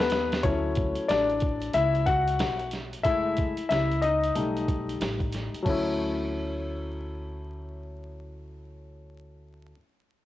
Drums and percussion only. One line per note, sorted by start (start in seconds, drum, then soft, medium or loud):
0.00 snare medium
0.10 snare loud
0.10 closed hi-hat medium
0.32 snare medium
0.32 closed hi-hat soft
0.43 kick medium
0.43 closed hi-hat medium
0.75 kick medium
0.75 closed hi-hat medium
0.95 closed hi-hat soft
1.09 snare medium
1.09 closed hi-hat medium
1.29 closed hi-hat soft
1.40 kick medium
1.40 closed hi-hat medium
1.62 closed hi-hat soft
1.73 closed hi-hat medium
1.95 closed hi-hat soft
2.06 kick medium
2.06 closed hi-hat medium
2.28 closed hi-hat soft
2.39 snare loud
2.39 closed hi-hat medium
2.59 closed hi-hat soft
2.71 snare soft
2.71 closed hi-hat medium
2.93 closed hi-hat soft
3.05 kick loud
3.05 closed hi-hat medium
3.37 kick medium
3.37 closed hi-hat medium
3.57 closed hi-hat soft
3.71 snare medium
3.71 closed hi-hat medium
3.91 closed hi-hat soft
4.02 closed hi-hat medium
4.23 closed hi-hat soft
4.35 closed hi-hat medium
4.57 closed hi-hat soft
4.68 kick medium
4.68 closed hi-hat medium
4.89 closed hi-hat soft
5.01 snare medium
5.01 closed hi-hat medium
5.20 kick medium
5.20 closed hi-hat soft
5.32 snare soft
5.32 closed hi-hat medium
5.54 closed hi-hat soft
5.66 kick medium
5.66 crash medium